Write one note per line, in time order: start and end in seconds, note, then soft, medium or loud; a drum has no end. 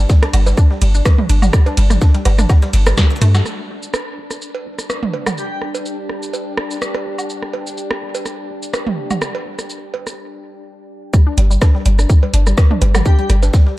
0.00 3.44 D4 medium
0.10 0.12 G3 medium
0.10 kick loud
0.10 snare loud
0.10 shaker medium
0.10 shaker soft
0.23 0.26 D4 medium
0.23 cross-stick medium
0.23 snare soft
0.23 closed hi-hat soft
0.33 0.53 G1 loud
0.33 0.38 G3 medium
0.33 closed hi-hat medium
0.33 ride medium
0.33 low woodblock soft
0.33 shaker medium
0.46 0.49 G3 medium
0.46 cowbell medium
0.46 shaker medium
0.57 0.62 D4 medium
0.57 kick loud
0.57 cross-stick soft
0.57 shaker soft
0.57 shaker medium
0.71 0.75 G3 medium
0.71 snare soft
0.81 1.01 G1 medium
0.81 0.84 G3 medium
0.81 closed hi-hat medium
0.81 ride medium
0.81 shaker medium
0.94 0.99 D4 medium
0.94 shaker medium
1.05 1.10 G3 medium
1.05 kick loud
1.05 cross-stick loud
1.05 cross-stick soft
1.05 snare loud
1.05 cowbell medium
1.05 shaker soft
1.05 shaker medium
1.18 1.21 G3 medium
1.18 mid tom medium
1.29 1.49 G1 medium
1.29 1.34 D4 medium
1.29 closed hi-hat medium
1.29 ride medium
1.29 shaker medium
1.42 1.46 G3 medium
1.42 snare soft
1.42 mid tom medium
1.42 low woodblock medium
1.42 shaker medium
1.53 1.56 G3 medium
1.53 kick loud
1.53 cross-stick medium
1.53 shaker soft
1.53 shaker medium
1.66 1.70 D4 medium
1.66 closed hi-hat soft
1.66 cowbell medium
1.77 1.97 G1 loud
1.77 1.82 G3 medium
1.77 closed hi-hat medium
1.77 ride medium
1.77 shaker medium
1.90 1.93 G3 medium
1.90 cross-stick soft
1.90 snare soft
1.90 closed hi-hat soft
1.90 mid tom medium
1.90 shaker medium
2.01 2.06 D4 medium
2.01 kick loud
2.01 snare loud
2.01 shaker soft
2.01 shaker medium
2.14 2.18 G3 medium
2.14 snare medium
2.14 closed hi-hat soft
2.25 2.45 G1 loud
2.25 2.28 G3 medium
2.25 closed hi-hat medium
2.25 ride medium
2.25 cowbell medium
2.25 low woodblock medium
2.25 shaker medium
2.38 2.42 D4 medium
2.38 cross-stick soft
2.38 closed hi-hat soft
2.38 mid tom medium
2.38 shaker medium
2.49 2.54 G3 medium
2.49 kick loud
2.49 snare loud
2.49 low woodblock medium
2.49 shaker soft
2.49 shaker medium
2.62 2.65 G3 medium
2.62 snare loud
2.62 shaker medium
2.73 2.93 G1 medium
2.73 snare loud
2.73 closed hi-hat medium
2.73 ride medium
2.73 shaker medium
2.86 2.91 G3 medium
2.86 cross-stick medium
2.86 snare loud
2.86 cowbell medium
2.86 shaker medium
2.97 3.00 D3 loud
2.97 kick loud
2.97 cross-stick loud
2.97 snare loud
2.97 shaker medium
2.97 shaker soft
3.10 snare medium
3.10 shaker medium
3.16 snare medium
3.16 shaker medium
3.21 3.41 G2 loud
3.21 3.26 A3 loud
3.21 cross-stick soft
3.21 snare loud
3.21 closed hi-hat medium
3.21 ride medium
3.21 shaker medium
3.35 3.40 A3 loud
3.35 snare soft
3.35 snare medium
3.35 low woodblock medium
3.35 shaker medium
3.46 10.18 D4 medium
3.46 10.18 G4 medium
3.46 cross-stick soft
3.46 shaker soft
3.69 3.89 G1 medium
3.83 shaker soft
3.94 10.18 D5 medium
3.94 cross-stick medium
3.94 cowbell medium
3.94 shaker soft
4.17 4.37 G1 medium
4.31 cross-stick soft
4.31 shaker soft
4.42 10.18 G5 medium
4.42 shaker soft
4.55 cowbell medium
4.66 4.85 G1 medium
4.78 cross-stick soft
4.78 shaker soft
4.90 cross-stick loud
4.90 shaker soft
5.03 mid tom medium
5.14 5.33 G1 medium
5.14 cowbell medium
5.26 cross-stick medium
5.26 mid tom medium
5.26 low woodblock soft
5.26 shaker soft
5.38 5.46 G4 medium
5.38 shaker soft
5.51 5.58 G4 medium
5.62 5.81 G1 loud
5.62 cross-stick soft
5.75 cowbell medium
5.75 shaker soft
5.86 shaker soft
6.09 6.29 G1 medium
6.09 cross-stick soft
6.23 shaker soft
6.33 cowbell medium
6.33 shaker soft
6.57 6.77 G1 medium
6.57 cross-stick medium
6.71 shaker soft
6.82 cross-stick loud
6.82 shaker soft
6.95 cross-stick soft
6.95 cowbell medium
7.06 7.25 G1 medium
7.18 low woodblock medium
7.18 shaker soft
7.30 shaker soft
7.42 cross-stick soft
7.53 7.73 G1 medium
7.53 cowbell medium
7.67 shaker soft
7.78 shaker soft
7.91 cross-stick medium
8.02 8.21 G1 medium
8.15 cowbell medium
8.15 shaker soft
8.26 cross-stick soft
8.26 shaker soft
8.50 8.69 G1 medium
8.63 shaker soft
8.74 cross-stick loud
8.74 cross-stick soft
8.74 cowbell medium
8.74 shaker soft
8.87 mid tom medium
8.98 9.17 G1 medium
9.11 mid tom medium
9.11 low woodblock medium
9.11 shaker soft
9.22 cross-stick medium
9.22 shaker soft
9.35 cowbell medium
9.46 9.65 G1 medium
9.59 cross-stick soft
9.59 shaker soft
9.70 shaker soft
9.94 10.13 G1 medium
9.94 cowbell medium
10.07 cross-stick soft
10.07 shaker soft
11.14 11.16 G3 medium
11.14 kick loud
11.14 cross-stick soft
11.14 shaker medium
11.14 shaker soft
11.27 11.30 D4 medium
11.37 11.57 G1 loud
11.37 11.42 G3 medium
11.37 snare medium
11.37 closed hi-hat loud
11.37 shaker medium
11.51 11.53 G3 medium
11.51 shaker medium
11.62 11.66 D4 medium
11.62 kick loud
11.62 cross-stick medium
11.62 snare loud
11.62 cowbell medium
11.62 shaker medium
11.62 shaker soft
11.75 11.78 G3 medium
11.75 snare soft
11.86 12.05 G1 loud
11.86 11.88 G3 medium
11.86 closed hi-hat medium
11.86 shaker medium
11.99 12.03 D4 medium
11.99 cross-stick soft
11.99 shaker medium
12.10 12.14 G3 medium
12.10 kick loud
12.10 shaker medium
12.10 shaker soft
12.23 12.25 G3 medium
12.23 cowbell medium
12.33 12.53 G1 medium
12.33 12.38 D4 medium
12.33 closed hi-hat medium
12.33 shaker medium
12.47 12.51 G3 medium
12.47 cross-stick soft
12.47 shaker medium
12.58 12.60 G3 medium
12.58 kick loud
12.58 cross-stick loud
12.58 snare loud
12.58 shaker medium
12.58 shaker soft
12.71 12.75 D4 medium
12.71 mid tom loud
12.82 13.01 G1 medium
12.82 12.86 G3 medium
12.82 closed hi-hat medium
12.82 cowbell medium
12.82 shaker medium
12.95 12.97 G3 medium
12.95 cross-stick medium
12.95 snare soft
12.95 mid tom medium
12.95 low woodblock medium
12.95 shaker medium
13.05 13.10 D4 medium
13.05 13.14 G4 medium
13.05 kick loud
13.05 shaker soft
13.05 shaker medium
13.19 13.22 G3 medium
13.19 13.26 G4 medium
13.19 closed hi-hat soft
13.30 13.49 G1 loud
13.30 13.32 G3 medium
13.30 cross-stick soft
13.30 closed hi-hat medium
13.30 shaker medium
13.43 13.46 D4 medium
13.43 snare soft
13.43 cowbell medium
13.43 shaker medium
13.54 13.58 G3 medium
13.54 kick loud
13.54 snare loud
13.54 shaker medium
13.54 shaker soft
13.67 13.69 G3 medium
13.67 snare medium